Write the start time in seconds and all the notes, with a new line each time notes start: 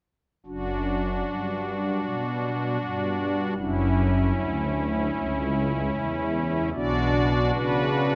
0.46 F#1 F#2 D4 F#4
1.25 G2
2.03 B2
2.81 G2
3.57 F#1 F#2 C#4 E4
4.34 D2
5.12 C#2
5.92 E2
6.74 B1 B2 D4 F#4 D5
7.54 C#3 B4